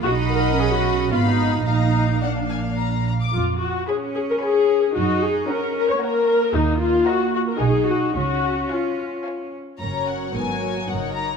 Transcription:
<<
  \new Staff \with { instrumentName = "Violin section" } { \time 3/4 \key bes \phrygian \tempo 4 = 111 b''2 ces'''4 | bes''4 ges''8 aes''8 bes''8 bes''16 d'''16 | \key fis \major r4 b''4 b''4 | r4 ais''4 ais''4 |
r4 ais''4 gis''4 | r4 gis''4 gis''4 | ais''8 fis''8 gis''4 fis''8 ais''8 | }
  \new Staff \with { instrumentName = "Violin section" } { \time 3/4 \key bes \phrygian << { <dis'' fis''>2 f''4 | f''4 f''4. r8 | \key fis \major r4 <cis'' gis''>4 <cis'' gis''>4 | r4 <cis'' fis''>4 <cis'' fis''>4 |
r4 <dis'' fis''>4 <dis'' fis''>4 | r4 <cis'' eis''>4 <cis'' eis''>4 | ais'4 cis''2 | } \\ { r2. | r2. | r2. | r2. |
r2. | r2. | cis''4 ais'4 ais'4 | } >> }
  \new Staff \with { instrumentName = "Viola section" } { \time 3/4 \key bes \phrygian << { fis'8 bes'8 aes'16 fis'8. f'16 ees'8. | ees'4 d'4. r8 | \key fis \major eis'8 fis'8 gis'8 gis'16 ais'16 gis'4 | fis'8 gis'8 ais'8 ais'16 cis''16 ais'4 |
dis'8 eis'8 fis'8 fis'16 ais'16 gis'8 fis'8 | fis'4 eis'4 r4 | cis'4 b8 ais8 dis'4 | } \\ { r2. | r2. | r2. | r2. |
r2. | r2. | fis2. | } >> }
  \new Staff \with { instrumentName = "Cello section" } { \time 3/4 \key bes \phrygian dis'4 des'4 ces'4 | bes2~ bes8 r8 | \key fis \major r4 cis'2 | dis'4 cis'4 ais4~ |
ais2 dis'4 | cis'2~ cis'8 r8 | fis,4 gis,4 fis,4 | }
  \new Staff \with { instrumentName = "Double bass section" } { \clef bass \time 3/4 \key bes \phrygian b,,2 aes,,4 | bes,,2~ bes,,8 r8 | \key fis \major eis,4 r2 | fis,4 r2 |
dis,4 r4 b,,4 | cis,4 r2 | fis,,4 gis,,4 fis,,4 | }
>>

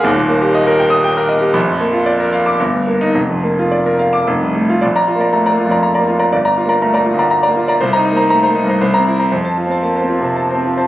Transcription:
<<
  \new Staff \with { instrumentName = "Grand piano" } { \time 3/4 \key bes \major \tempo 4 = 117 r4. r16 ees'''8 r8. | r4. r16 d'''16 r8. ees'16 | r4. r16 d'''16 r8. f'16 | d''16 <d'' bes''>16 f'16 <d'' bes''>16 bes''16 <d'' bes''>16 f'16 <d'' bes''>16 bes''16 <d'' bes''>16 f'16 <d'' bes''>16 |
d''16 <d'' bes''>16 f'16 <d'' bes''>16 bes''16 <d'' bes''>16 f'16 <d'' bes''>16 bes''16 <d'' bes''>16 f'16 <d'' bes''>16 | c''16 <c'' bes''>16 ees'16 <c'' bes''>16 bes''16 <c'' bes''>16 ees'16 <c'' bes''>16 c''16 <c'' bes''>16 e'16 <c'' bes''>16 | c''16 <c'' a''>16 f'16 <c'' a''>16 a''16 <c'' a''>16 f'16 <c'' a''>16 a''16 <c'' a''>16 f'16 <c'' a''>16 | }
  \new Staff \with { instrumentName = "Grand piano" } { \time 3/4 \key bes \major <ees,, ees,>16 bes,16 bes16 g'16 ees''16 bes'16 g''8 g''16 bes'16 ees''16 g'16 | bes,,16 f,16 bes16 f'16 d''16 bes'16 f''8 g,,16 g,16 bes8 | f,,16 f,16 bes16 f'16 d''16 bes'16 f''8 f,,16 c,16 a8 | \tuplet 3/2 { bes,,4 bes8 a8 bes8 f,8~ f,8 bes4 } |
\tuplet 3/2 { g,,4 bes8 a8 bes8 d,8~ d,8 bes4 } | \tuplet 3/2 { c,8 ees'8 bes8 a8 bes8 g,8 c,8 c'4 } | \tuplet 3/2 { f,4 c'8 bes8 c'8 c8~ c8 c'4 } | }
>>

